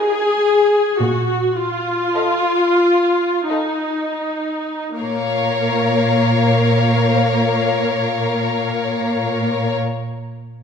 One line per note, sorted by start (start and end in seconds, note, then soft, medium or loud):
0.00 0.98 G#4 medium
0.00 0.72 A#4 soft
0.00 0.72 D#5 soft
0.00 0.72 F#5 soft
0.98 1.93 A#2 medium
0.98 1.55 F#4 medium
1.55 3.49 F4 medium
2.16 3.17 A4 soft
2.16 3.17 D#5 soft
2.16 3.17 F5 soft
3.49 4.96 D#4 soft
3.49 4.67 A4 soft
3.49 4.67 D#5 soft
3.49 4.67 F5 soft
4.99 9.73 A#2 soft
4.99 9.72 A#3 soft
4.99 9.73 A#4 soft
4.99 9.74 C#5 soft
4.99 9.72 F5 soft